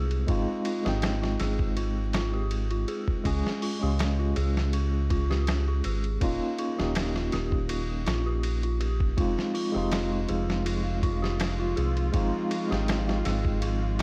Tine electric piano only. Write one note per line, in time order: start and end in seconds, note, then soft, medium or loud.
0.00 0.23 G#3 medium
0.00 0.24 C4 medium
0.00 0.25 D#4 medium
0.00 0.26 F4 medium
0.27 0.80 G#3 medium
0.27 0.81 C4 medium
0.27 0.81 D#4 medium
0.27 0.81 F4 loud
0.83 3.19 G#3 medium
0.83 3.20 C4 medium
0.83 3.21 D#4 medium
0.89 3.23 G5 medium
3.23 3.76 G#3 medium
3.23 3.77 C#4 medium
3.23 3.77 F4 medium
3.23 3.78 G#4 medium
3.79 6.16 G#3 medium
3.79 6.17 C#4 medium
3.79 6.18 F4 medium
6.21 6.73 A#3 medium
6.21 6.74 C#4 medium
6.21 6.74 D#4 medium
6.21 6.75 F4 medium
6.76 9.12 A#3 medium
6.76 9.13 C#4 medium
6.76 9.14 D#4 medium
6.82 9.15 G4 medium
9.17 9.69 G#3 medium
9.17 9.70 C4 medium
9.17 9.70 D#4 medium
9.17 9.71 F4 medium
9.72 12.09 G#3 medium
9.72 12.10 C4 medium
9.72 12.11 D#4 medium
9.78 12.12 F4 medium
12.13 12.65 G#3 medium
12.13 12.66 C4 medium
12.13 12.66 D#4 medium
12.13 12.67 F4 loud
12.68 14.02 G#3 medium
12.68 14.02 C4 medium
12.68 14.02 D#4 medium
12.74 14.02 G5 medium